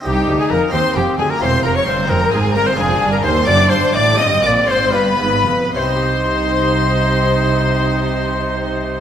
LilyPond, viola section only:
\new Staff \with { instrumentName = "Viola section" } { \time 6/8 \key c \minor \tempo 4. = 83 ees'4. c'4. | c'4. c'4. | d'4. d'4. | c'4. b4 r8 |
ees'2.~ | ees'2. | }